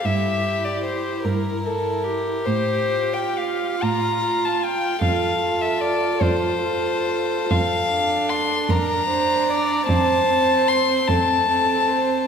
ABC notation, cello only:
X:1
M:6/8
L:1/8
Q:3/8=50
K:F
V:1 name="Cello" clef=bass
G,,3 G,,3 | A,,3 A,,3 | F,,3 F,,3 | F,,3 F,,3 |
F,,3 F,,3 |]